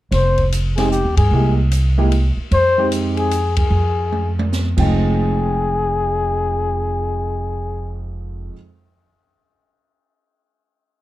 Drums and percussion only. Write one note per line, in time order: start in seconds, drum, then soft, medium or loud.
0.12 kick soft
0.12 snare soft
0.12 ride medium
0.37 kick soft
0.37 ride soft
0.52 hi-hat pedal medium
0.52 ride medium
0.78 snare soft
0.78 ride medium
0.92 hi-hat pedal medium
1.17 kick medium
1.17 ride medium
1.72 hi-hat pedal medium
1.72 ride medium
2.12 ride medium
2.51 kick soft
2.51 ride soft
2.92 hi-hat pedal medium
2.92 ride medium
3.17 ride soft
3.31 hi-hat pedal soft
3.31 ride medium
3.56 kick medium
3.56 ride medium
4.12 high tom soft
4.39 high tom medium
4.53 snare medium
4.53 hi-hat pedal medium
4.77 kick medium
4.77 crash medium